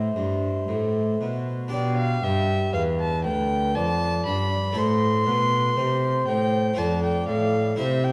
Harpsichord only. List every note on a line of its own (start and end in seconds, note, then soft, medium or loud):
0.00 0.12 A2 medium
0.00 1.66 C4 soft
0.00 1.67 E4 soft
0.00 1.68 G4 soft
0.16 0.65 G2 medium
0.68 1.17 A2 soft
1.21 1.69 B2 soft
1.68 4.70 D4 medium
1.68 4.71 G4 soft
1.73 2.20 B2 medium
2.23 2.70 G2 medium
2.74 3.20 E2 medium
3.24 3.71 D2 medium
3.76 4.22 F2 medium
4.26 4.72 G2 medium
4.72 6.72 A3 soft
4.72 6.72 E4 soft
4.72 6.73 A4 soft
4.76 5.23 A2 medium
5.26 5.73 B2 medium
5.77 6.24 C3 medium
6.27 6.74 A2 medium
6.74 7.74 A3 medium
6.74 7.74 F4 medium
6.74 7.75 C5 soft
6.78 7.25 F2 medium
7.29 7.75 A2 medium
7.76 8.12 C3 medium
7.76 8.12 E4 soft
7.76 8.12 C5 soft